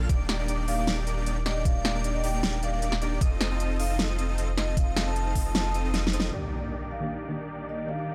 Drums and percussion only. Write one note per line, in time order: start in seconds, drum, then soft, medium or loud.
0.09 kick loud
0.09 closed hi-hat medium
0.29 snare medium
0.29 closed hi-hat medium
0.48 closed hi-hat medium
0.68 open hi-hat loud
0.87 snare loud
0.87 closed hi-hat medium
1.07 closed hi-hat medium
1.26 closed hi-hat medium
1.46 snare medium
1.46 closed hi-hat medium
1.65 kick loud
1.65 closed hi-hat medium
1.85 snare medium
1.85 closed hi-hat medium
2.04 closed hi-hat medium
2.24 open hi-hat loud
2.43 snare loud
2.43 closed hi-hat medium
2.63 closed hi-hat medium
2.82 closed hi-hat medium
2.92 snare medium
3.02 closed hi-hat medium
3.21 kick loud
3.21 closed hi-hat medium
3.41 snare medium
3.41 closed hi-hat medium
3.60 closed hi-hat medium
3.80 open hi-hat loud
3.99 snare loud
3.99 closed hi-hat medium
4.19 closed hi-hat medium
4.38 closed hi-hat medium
4.58 snare medium
4.58 closed hi-hat medium
4.77 kick loud
4.77 closed hi-hat medium
4.97 snare medium
4.97 closed hi-hat medium
5.16 closed hi-hat medium
5.35 kick medium
5.35 open hi-hat loud
5.55 snare loud
5.55 closed hi-hat medium
5.74 closed hi-hat medium
5.94 snare medium
5.94 closed hi-hat medium
6.07 snare medium
6.13 closed hi-hat medium
6.20 snare medium